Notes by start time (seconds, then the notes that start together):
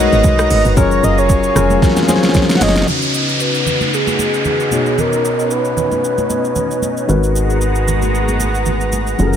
Already playing: G#3 B3 F#4 B4 A#5
0.00 D#4 F#4 A#4 C#5 D#5
0.12 G#1, shaker
0.24 B1, kick, high conga, low conga, shaker
0.39 cross-stick, shaker
0.50 G#1 D#5, open hi-hat, high conga, shaker
0.65 F#1, shaker
0.76 F#1 F#3 C#4 F4 G#4 A#4 C#5, kick, low conga, shaker
0.91 shaker
1.03 F#1 D#5, shaker
1.18 C#5, shaker
1.29 kick, shaker
1.44 shaker
1.55 F1 F#3 C#4 F4 G#4 A#4, cross-stick, low conga, shaker
1.70 high conga, shaker
1.82 kick, snare, low conga, shaker
1.89 snare
1.96 snare, high conga, shaker
2.03 snare
2.08 F#3 C#4 F4 G#4 C5, snare, high conga, shaker
2.16 C#5, snare
2.23 snare, shaker
2.29 snare
2.34 kick, snare, high conga, low conga, shaker
2.42 snare
2.49 snare, shaker
2.55 F#5, snare
2.60 F#1 F#3 C#4 F4 G#4 C#5 D#5, snare, open hi-hat, high conga, shaker
2.68 snare
2.76 snare, shaker
2.82 snare
2.86 C#3 B3 C#4 D#4 F#4 B4, downlifter, low conga, shaker
3.02 shaker
3.14 shaker
3.29 shaker
3.40 B4, shaker
3.54 shaker
3.66 low conga, shaker
3.81 high conga, shaker
3.94 G#4, shaker
4.07 high conga, shaker
4.19 high conga, shaker
4.34 shaker
4.45 G#4, high conga, low conga, shaker
4.60 shaker
4.70 B2 B3 C#4 D#4 F#4 C#5, high conga, shaker
4.86 shaker
4.98 A#4, low conga, shaker
5.13 shaker
5.25 shaker
5.39 shaker
5.51 B4, shaker
5.65 shaker
5.77 low conga, shaker
5.92 high conga, shaker
6.04 shaker
6.18 high conga, shaker
6.30 high conga, shaker
6.45 shaker
6.56 high conga, low conga, shaker
6.71 shaker
6.82 high conga, shaker
6.97 shaker
7.07 G#1 G#3 B3 D#4 F#4 A#4 B4 A#5, low conga, shaker
7.23 shaker
7.36 shaker
7.50 shaker
7.61 shaker
7.75 shaker
7.88 low conga, shaker
8.02 high conga, shaker
8.15 shaker
8.28 high conga, shaker
8.40 high conga, shaker
8.55 shaker
8.66 high conga, low conga, shaker
8.81 shaker
8.92 high conga, shaker
9.07 shaker
9.18 F#1 F#3 C#4 F4 G#4 A4, low conga, shaker
9.27 A#4
9.33 shaker